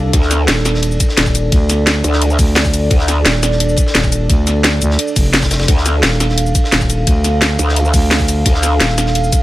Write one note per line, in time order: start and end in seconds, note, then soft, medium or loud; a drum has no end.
0.00 0.12 C2 medium
0.00 9.43 D4 medium
0.00 9.43 A4 medium
0.00 0.11 F5 medium
0.00 swell medium
0.13 0.47 D2 loud
0.13 5.66 D5 medium
0.13 kick loud
0.13 closed hi-hat loud
0.13 ride loud
0.22 snare soft
0.31 snare soft
0.31 closed hi-hat medium
0.31 ride medium
0.31 shaker medium
0.48 0.99 D#1 medium
0.48 snare loud
0.48 closed hi-hat loud
0.48 ride medium
0.57 snare soft
0.65 snare medium
0.65 closed hi-hat medium
0.65 ride medium
0.65 shaker medium
0.74 snare soft
0.82 closed hi-hat medium
0.82 ride loud
0.91 shaker soft
1.00 kick loud
1.00 closed hi-hat medium
1.00 ride medium
1.00 shaker medium
1.09 snare soft
1.17 1.51 D#1 medium
1.17 snare loud
1.17 closed hi-hat loud
1.17 ride medium
1.26 kick medium
1.26 ride soft
1.26 shaker soft
1.35 closed hi-hat medium
1.35 ride medium
1.35 shaker medium
1.52 2.03 D2 loud
1.52 kick loud
1.52 closed hi-hat medium
1.52 ride loud
1.69 snare soft
1.69 closed hi-hat medium
1.69 ride medium
1.69 shaker medium
1.87 snare loud
1.87 closed hi-hat medium
1.87 ride medium
2.04 2.37 D2 loud
2.04 closed hi-hat medium
2.04 ride medium
2.04 shaker medium
2.13 snare medium
2.22 closed hi-hat medium
2.22 ride loud
2.30 shaker soft
2.39 2.90 D2 loud
2.39 kick loud
2.39 closed hi-hat medium
2.39 open hi-hat medium
2.39 shaker medium
2.48 ride soft
2.55 snare loud
2.55 closed hi-hat medium
2.55 ride medium
2.65 kick medium
2.65 shaker soft
2.74 closed hi-hat medium
2.74 ride medium
2.74 shaker medium
2.90 3.24 D2 medium
2.90 kick loud
2.90 closed hi-hat medium
2.90 ride medium
2.99 snare soft
3.08 snare soft
3.08 closed hi-hat medium
3.08 ride medium
3.08 shaker medium
3.25 3.76 D#1 medium
3.25 snare loud
3.25 closed hi-hat loud
3.25 ride medium
3.35 snare soft
3.43 snare soft
3.43 closed hi-hat medium
3.43 ride medium
3.43 shaker medium
3.51 snare soft
3.60 closed hi-hat medium
3.60 ride medium
3.69 shaker soft
3.76 kick loud
3.76 closed hi-hat medium
3.76 ride medium
3.76 shaker medium
3.86 snare medium
3.94 4.28 D#1 loud
3.94 snare loud
3.94 closed hi-hat medium
3.94 ride medium
4.04 kick medium
4.04 ride soft
4.04 shaker soft
4.12 closed hi-hat medium
4.12 ride medium
4.12 shaker medium
4.30 4.80 D2 loud
4.30 kick loud
4.30 closed hi-hat medium
4.30 ride medium
4.47 snare soft
4.47 closed hi-hat medium
4.47 ride medium
4.47 shaker medium
4.63 snare loud
4.63 closed hi-hat medium
4.63 ride medium
4.82 4.98 D2 loud
4.82 closed hi-hat medium
4.82 ride medium
4.82 shaker medium
4.90 snare medium
4.99 closed hi-hat medium
4.99 ride loud
5.08 shaker soft
5.16 5.67 F1 loud
5.16 kick loud
5.16 closed hi-hat medium
5.16 open hi-hat medium
5.16 shaker medium
5.26 ride soft
5.33 snare loud
5.33 closed hi-hat medium
5.33 ride medium
5.42 kick medium
5.42 snare loud
5.42 ride medium
5.42 shaker soft
5.51 snare loud
5.51 closed hi-hat medium
5.51 ride medium
5.51 shaker medium
5.59 snare loud
5.59 ride medium
5.68 6.02 D2 loud
5.68 9.43 F5 loud
5.68 kick loud
5.68 closed hi-hat medium
5.68 ride medium
5.77 snare soft
5.86 snare soft
5.86 closed hi-hat medium
5.86 ride medium
5.86 shaker medium
6.03 6.54 D#1 medium
6.03 snare loud
6.03 closed hi-hat medium
6.03 ride medium
6.11 snare soft
6.20 snare soft
6.20 closed hi-hat medium
6.20 ride medium
6.20 shaker medium
6.29 snare soft
6.37 closed hi-hat medium
6.37 ride medium
6.46 shaker soft
6.55 kick loud
6.55 closed hi-hat medium
6.55 ride medium
6.55 shaker medium
6.64 snare soft
6.72 7.06 D#1 loud
6.72 snare loud
6.72 closed hi-hat medium
6.72 ride medium
6.81 kick medium
6.81 ride soft
6.81 shaker soft
6.90 closed hi-hat medium
6.90 ride medium
6.90 shaker medium
7.07 7.58 D2 medium
7.07 kick loud
7.07 closed hi-hat medium
7.07 ride loud
7.24 snare soft
7.24 closed hi-hat medium
7.24 ride medium
7.24 shaker medium
7.41 snare loud
7.41 closed hi-hat loud
7.41 ride loud
7.59 7.92 D2 loud
7.59 closed hi-hat medium
7.59 ride medium
7.59 shaker medium
7.69 snare medium
7.76 closed hi-hat medium
7.76 ride medium
7.85 shaker soft
7.94 8.44 D2 loud
7.94 kick loud
7.94 closed hi-hat medium
7.94 open hi-hat medium
7.94 shaker medium
8.02 ride soft
8.11 snare loud
8.11 closed hi-hat medium
8.11 ride loud
8.20 kick medium
8.20 shaker soft
8.28 closed hi-hat medium
8.28 ride medium
8.28 shaker medium
8.45 8.79 D2 loud
8.45 kick loud
8.45 closed hi-hat loud
8.45 ride loud
8.54 snare soft
8.63 snare soft
8.63 closed hi-hat medium
8.63 ride medium
8.63 shaker medium
8.80 9.31 D#1 medium
8.80 snare loud
8.80 closed hi-hat loud
8.80 ride medium
8.89 snare medium
8.98 snare soft
8.98 closed hi-hat medium
8.98 ride medium
8.98 shaker medium
9.06 snare soft
9.15 closed hi-hat medium
9.15 ride loud
9.24 shaker soft
9.32 kick loud
9.32 closed hi-hat medium
9.32 ride medium
9.32 shaker medium